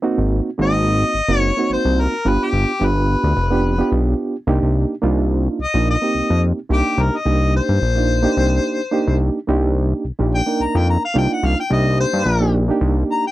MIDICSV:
0, 0, Header, 1, 4, 480
1, 0, Start_track
1, 0, Key_signature, -3, "minor"
1, 0, Tempo, 555556
1, 30, Time_signature, 4, 2, 24, 8
1, 11505, End_track
2, 0, Start_track
2, 0, Title_t, "Harmonica"
2, 0, Program_c, 0, 22
2, 539, Note_on_c, 0, 75, 107
2, 1196, Note_off_c, 0, 75, 0
2, 1196, Note_on_c, 0, 73, 107
2, 1456, Note_off_c, 0, 73, 0
2, 1494, Note_on_c, 0, 72, 83
2, 1733, Note_on_c, 0, 70, 81
2, 1746, Note_off_c, 0, 72, 0
2, 1975, Note_on_c, 0, 71, 84
2, 1988, Note_off_c, 0, 70, 0
2, 2111, Note_on_c, 0, 67, 80
2, 2124, Note_off_c, 0, 71, 0
2, 2459, Note_on_c, 0, 71, 77
2, 2472, Note_off_c, 0, 67, 0
2, 3376, Note_off_c, 0, 71, 0
2, 4860, Note_on_c, 0, 75, 84
2, 5079, Note_off_c, 0, 75, 0
2, 5098, Note_on_c, 0, 75, 81
2, 5551, Note_off_c, 0, 75, 0
2, 5813, Note_on_c, 0, 67, 97
2, 6061, Note_on_c, 0, 70, 78
2, 6074, Note_off_c, 0, 67, 0
2, 6195, Note_on_c, 0, 75, 78
2, 6208, Note_off_c, 0, 70, 0
2, 6518, Note_off_c, 0, 75, 0
2, 6535, Note_on_c, 0, 72, 86
2, 7930, Note_off_c, 0, 72, 0
2, 8939, Note_on_c, 0, 79, 91
2, 9178, Note_on_c, 0, 82, 79
2, 9191, Note_off_c, 0, 79, 0
2, 9311, Note_on_c, 0, 79, 82
2, 9324, Note_off_c, 0, 82, 0
2, 9400, Note_off_c, 0, 79, 0
2, 9415, Note_on_c, 0, 82, 65
2, 9527, Note_off_c, 0, 82, 0
2, 9547, Note_on_c, 0, 77, 85
2, 9639, Note_off_c, 0, 77, 0
2, 9657, Note_on_c, 0, 79, 84
2, 9787, Note_on_c, 0, 78, 76
2, 9800, Note_off_c, 0, 79, 0
2, 9896, Note_on_c, 0, 77, 84
2, 9909, Note_off_c, 0, 78, 0
2, 10008, Note_off_c, 0, 77, 0
2, 10019, Note_on_c, 0, 79, 88
2, 10127, Note_on_c, 0, 75, 81
2, 10140, Note_off_c, 0, 79, 0
2, 10354, Note_off_c, 0, 75, 0
2, 10370, Note_on_c, 0, 72, 95
2, 10829, Note_off_c, 0, 72, 0
2, 11331, Note_on_c, 0, 82, 84
2, 11446, Note_off_c, 0, 82, 0
2, 11466, Note_on_c, 0, 79, 84
2, 11505, Note_off_c, 0, 79, 0
2, 11505, End_track
3, 0, Start_track
3, 0, Title_t, "Reed electric piano"
3, 0, Program_c, 1, 4
3, 19, Note_on_c, 1, 58, 90
3, 21, Note_on_c, 1, 60, 86
3, 29, Note_on_c, 1, 63, 91
3, 34, Note_on_c, 1, 66, 100
3, 418, Note_off_c, 1, 58, 0
3, 419, Note_off_c, 1, 60, 0
3, 423, Note_off_c, 1, 63, 0
3, 426, Note_off_c, 1, 66, 0
3, 501, Note_on_c, 1, 58, 72
3, 504, Note_on_c, 1, 60, 64
3, 509, Note_on_c, 1, 63, 62
3, 516, Note_on_c, 1, 66, 78
3, 987, Note_off_c, 1, 58, 0
3, 988, Note_off_c, 1, 60, 0
3, 991, Note_off_c, 1, 63, 0
3, 994, Note_off_c, 1, 66, 0
3, 1114, Note_on_c, 1, 58, 90
3, 1116, Note_on_c, 1, 60, 76
3, 1121, Note_on_c, 1, 63, 78
3, 1129, Note_on_c, 1, 66, 86
3, 1306, Note_off_c, 1, 58, 0
3, 1307, Note_off_c, 1, 60, 0
3, 1309, Note_off_c, 1, 63, 0
3, 1313, Note_off_c, 1, 66, 0
3, 1356, Note_on_c, 1, 58, 69
3, 1362, Note_on_c, 1, 60, 67
3, 1366, Note_on_c, 1, 63, 73
3, 1375, Note_on_c, 1, 66, 78
3, 1840, Note_off_c, 1, 58, 0
3, 1842, Note_off_c, 1, 60, 0
3, 1844, Note_off_c, 1, 63, 0
3, 1849, Note_off_c, 1, 66, 0
3, 1943, Note_on_c, 1, 59, 78
3, 1948, Note_on_c, 1, 62, 72
3, 1954, Note_on_c, 1, 65, 76
3, 1964, Note_on_c, 1, 67, 78
3, 2340, Note_off_c, 1, 59, 0
3, 2343, Note_off_c, 1, 62, 0
3, 2346, Note_off_c, 1, 65, 0
3, 2351, Note_off_c, 1, 67, 0
3, 2417, Note_on_c, 1, 59, 75
3, 2426, Note_on_c, 1, 62, 66
3, 2434, Note_on_c, 1, 65, 61
3, 2437, Note_on_c, 1, 67, 75
3, 2905, Note_off_c, 1, 59, 0
3, 2909, Note_off_c, 1, 62, 0
3, 2914, Note_off_c, 1, 65, 0
3, 2915, Note_off_c, 1, 67, 0
3, 3030, Note_on_c, 1, 59, 89
3, 3036, Note_on_c, 1, 62, 83
3, 3039, Note_on_c, 1, 65, 76
3, 3045, Note_on_c, 1, 67, 93
3, 3224, Note_off_c, 1, 59, 0
3, 3227, Note_off_c, 1, 62, 0
3, 3228, Note_off_c, 1, 65, 0
3, 3232, Note_off_c, 1, 67, 0
3, 3269, Note_on_c, 1, 59, 89
3, 3273, Note_on_c, 1, 62, 78
3, 3281, Note_on_c, 1, 65, 81
3, 3288, Note_on_c, 1, 67, 93
3, 3756, Note_off_c, 1, 59, 0
3, 3759, Note_off_c, 1, 62, 0
3, 3762, Note_off_c, 1, 65, 0
3, 3766, Note_off_c, 1, 67, 0
3, 3863, Note_on_c, 1, 58, 95
3, 3868, Note_on_c, 1, 62, 83
3, 3874, Note_on_c, 1, 63, 88
3, 3878, Note_on_c, 1, 67, 98
3, 4261, Note_off_c, 1, 58, 0
3, 4263, Note_off_c, 1, 62, 0
3, 4266, Note_off_c, 1, 63, 0
3, 4268, Note_off_c, 1, 67, 0
3, 4336, Note_on_c, 1, 58, 88
3, 4340, Note_on_c, 1, 62, 80
3, 4347, Note_on_c, 1, 63, 75
3, 4352, Note_on_c, 1, 65, 93
3, 4825, Note_off_c, 1, 58, 0
3, 4827, Note_off_c, 1, 62, 0
3, 4830, Note_off_c, 1, 63, 0
3, 4833, Note_off_c, 1, 65, 0
3, 4959, Note_on_c, 1, 58, 73
3, 4963, Note_on_c, 1, 62, 65
3, 4973, Note_on_c, 1, 63, 66
3, 4975, Note_on_c, 1, 65, 70
3, 5149, Note_off_c, 1, 58, 0
3, 5151, Note_off_c, 1, 62, 0
3, 5156, Note_off_c, 1, 63, 0
3, 5157, Note_off_c, 1, 65, 0
3, 5197, Note_on_c, 1, 58, 77
3, 5203, Note_on_c, 1, 60, 64
3, 5210, Note_on_c, 1, 63, 63
3, 5213, Note_on_c, 1, 67, 73
3, 5681, Note_off_c, 1, 58, 0
3, 5684, Note_off_c, 1, 60, 0
3, 5687, Note_off_c, 1, 63, 0
3, 5689, Note_off_c, 1, 67, 0
3, 5783, Note_on_c, 1, 58, 74
3, 5787, Note_on_c, 1, 62, 70
3, 5794, Note_on_c, 1, 63, 72
3, 5801, Note_on_c, 1, 67, 85
3, 6181, Note_off_c, 1, 58, 0
3, 6183, Note_off_c, 1, 62, 0
3, 6187, Note_off_c, 1, 63, 0
3, 6190, Note_off_c, 1, 67, 0
3, 6265, Note_on_c, 1, 58, 74
3, 6273, Note_on_c, 1, 62, 63
3, 6277, Note_on_c, 1, 63, 63
3, 6285, Note_on_c, 1, 67, 76
3, 6750, Note_off_c, 1, 58, 0
3, 6754, Note_off_c, 1, 62, 0
3, 6756, Note_off_c, 1, 63, 0
3, 6760, Note_off_c, 1, 67, 0
3, 6873, Note_on_c, 1, 58, 73
3, 6879, Note_on_c, 1, 62, 70
3, 6884, Note_on_c, 1, 63, 66
3, 6891, Note_on_c, 1, 65, 76
3, 7066, Note_off_c, 1, 58, 0
3, 7069, Note_off_c, 1, 62, 0
3, 7072, Note_off_c, 1, 63, 0
3, 7076, Note_off_c, 1, 65, 0
3, 7106, Note_on_c, 1, 58, 83
3, 7114, Note_on_c, 1, 62, 85
3, 7118, Note_on_c, 1, 63, 82
3, 7123, Note_on_c, 1, 67, 96
3, 7596, Note_off_c, 1, 58, 0
3, 7600, Note_off_c, 1, 62, 0
3, 7602, Note_off_c, 1, 63, 0
3, 7605, Note_off_c, 1, 67, 0
3, 7700, Note_on_c, 1, 58, 88
3, 7706, Note_on_c, 1, 62, 78
3, 7711, Note_on_c, 1, 63, 87
3, 7720, Note_on_c, 1, 67, 99
3, 8101, Note_off_c, 1, 58, 0
3, 8103, Note_off_c, 1, 62, 0
3, 8106, Note_off_c, 1, 63, 0
3, 8110, Note_off_c, 1, 67, 0
3, 8186, Note_on_c, 1, 58, 78
3, 8190, Note_on_c, 1, 62, 75
3, 8196, Note_on_c, 1, 63, 77
3, 8204, Note_on_c, 1, 67, 89
3, 8671, Note_off_c, 1, 58, 0
3, 8673, Note_off_c, 1, 62, 0
3, 8676, Note_off_c, 1, 63, 0
3, 8680, Note_off_c, 1, 67, 0
3, 8801, Note_on_c, 1, 58, 75
3, 8805, Note_on_c, 1, 62, 66
3, 8811, Note_on_c, 1, 63, 61
3, 8816, Note_on_c, 1, 67, 78
3, 8991, Note_off_c, 1, 58, 0
3, 8993, Note_off_c, 1, 62, 0
3, 8996, Note_off_c, 1, 63, 0
3, 8998, Note_off_c, 1, 67, 0
3, 9041, Note_on_c, 1, 58, 71
3, 9046, Note_on_c, 1, 62, 67
3, 9053, Note_on_c, 1, 63, 65
3, 9058, Note_on_c, 1, 70, 80
3, 9525, Note_off_c, 1, 58, 0
3, 9527, Note_off_c, 1, 62, 0
3, 9530, Note_off_c, 1, 63, 0
3, 9533, Note_off_c, 1, 70, 0
3, 9626, Note_on_c, 1, 58, 82
3, 9632, Note_on_c, 1, 62, 75
3, 9638, Note_on_c, 1, 63, 79
3, 9645, Note_on_c, 1, 65, 88
3, 10024, Note_off_c, 1, 58, 0
3, 10027, Note_off_c, 1, 62, 0
3, 10030, Note_off_c, 1, 63, 0
3, 10034, Note_off_c, 1, 65, 0
3, 10108, Note_on_c, 1, 58, 66
3, 10111, Note_on_c, 1, 62, 63
3, 10117, Note_on_c, 1, 63, 59
3, 10124, Note_on_c, 1, 67, 77
3, 10593, Note_off_c, 1, 58, 0
3, 10594, Note_off_c, 1, 62, 0
3, 10597, Note_off_c, 1, 63, 0
3, 10601, Note_off_c, 1, 67, 0
3, 10715, Note_on_c, 1, 58, 74
3, 10721, Note_on_c, 1, 62, 68
3, 10724, Note_on_c, 1, 63, 60
3, 10731, Note_on_c, 1, 67, 81
3, 10909, Note_off_c, 1, 58, 0
3, 10912, Note_off_c, 1, 62, 0
3, 10914, Note_off_c, 1, 63, 0
3, 10917, Note_off_c, 1, 67, 0
3, 10957, Note_on_c, 1, 58, 86
3, 10963, Note_on_c, 1, 62, 86
3, 10970, Note_on_c, 1, 63, 82
3, 10979, Note_on_c, 1, 67, 101
3, 11443, Note_off_c, 1, 58, 0
3, 11446, Note_off_c, 1, 62, 0
3, 11449, Note_off_c, 1, 63, 0
3, 11454, Note_off_c, 1, 67, 0
3, 11505, End_track
4, 0, Start_track
4, 0, Title_t, "Analog synth bass"
4, 0, Program_c, 2, 38
4, 156, Note_on_c, 2, 32, 73
4, 354, Note_off_c, 2, 32, 0
4, 508, Note_on_c, 2, 32, 97
4, 901, Note_off_c, 2, 32, 0
4, 985, Note_on_c, 2, 32, 36
4, 1052, Note_off_c, 2, 32, 0
4, 1110, Note_on_c, 2, 30, 83
4, 1311, Note_off_c, 2, 30, 0
4, 1467, Note_on_c, 2, 32, 39
4, 1533, Note_off_c, 2, 32, 0
4, 1598, Note_on_c, 2, 36, 89
4, 1796, Note_off_c, 2, 36, 0
4, 1947, Note_on_c, 2, 31, 91
4, 2056, Note_off_c, 2, 31, 0
4, 2185, Note_on_c, 2, 31, 95
4, 2294, Note_off_c, 2, 31, 0
4, 2428, Note_on_c, 2, 31, 93
4, 2732, Note_off_c, 2, 31, 0
4, 2797, Note_on_c, 2, 38, 78
4, 2888, Note_off_c, 2, 38, 0
4, 2910, Note_on_c, 2, 29, 84
4, 3302, Note_off_c, 2, 29, 0
4, 3385, Note_on_c, 2, 35, 100
4, 3584, Note_off_c, 2, 35, 0
4, 3864, Note_on_c, 2, 36, 105
4, 3974, Note_off_c, 2, 36, 0
4, 3999, Note_on_c, 2, 36, 78
4, 4196, Note_off_c, 2, 36, 0
4, 4347, Note_on_c, 2, 36, 91
4, 4741, Note_off_c, 2, 36, 0
4, 4831, Note_on_c, 2, 36, 35
4, 4896, Note_off_c, 2, 36, 0
4, 4959, Note_on_c, 2, 34, 76
4, 5157, Note_off_c, 2, 34, 0
4, 5311, Note_on_c, 2, 36, 35
4, 5377, Note_off_c, 2, 36, 0
4, 5445, Note_on_c, 2, 41, 88
4, 5640, Note_off_c, 2, 41, 0
4, 5789, Note_on_c, 2, 36, 90
4, 5897, Note_off_c, 2, 36, 0
4, 6029, Note_on_c, 2, 36, 103
4, 6137, Note_off_c, 2, 36, 0
4, 6270, Note_on_c, 2, 36, 87
4, 6574, Note_off_c, 2, 36, 0
4, 6645, Note_on_c, 2, 43, 77
4, 6733, Note_off_c, 2, 43, 0
4, 6754, Note_on_c, 2, 34, 76
4, 7145, Note_off_c, 2, 34, 0
4, 7232, Note_on_c, 2, 36, 91
4, 7429, Note_off_c, 2, 36, 0
4, 7841, Note_on_c, 2, 36, 84
4, 8038, Note_off_c, 2, 36, 0
4, 8193, Note_on_c, 2, 36, 98
4, 8586, Note_off_c, 2, 36, 0
4, 8679, Note_on_c, 2, 36, 33
4, 8743, Note_off_c, 2, 36, 0
4, 8807, Note_on_c, 2, 34, 77
4, 9002, Note_off_c, 2, 34, 0
4, 9156, Note_on_c, 2, 36, 36
4, 9222, Note_off_c, 2, 36, 0
4, 9287, Note_on_c, 2, 41, 96
4, 9483, Note_off_c, 2, 41, 0
4, 9637, Note_on_c, 2, 36, 90
4, 9743, Note_off_c, 2, 36, 0
4, 9877, Note_on_c, 2, 36, 105
4, 9983, Note_off_c, 2, 36, 0
4, 10114, Note_on_c, 2, 36, 96
4, 10418, Note_off_c, 2, 36, 0
4, 10484, Note_on_c, 2, 43, 81
4, 10574, Note_off_c, 2, 43, 0
4, 10589, Note_on_c, 2, 34, 95
4, 10983, Note_off_c, 2, 34, 0
4, 11069, Note_on_c, 2, 36, 95
4, 11268, Note_off_c, 2, 36, 0
4, 11505, End_track
0, 0, End_of_file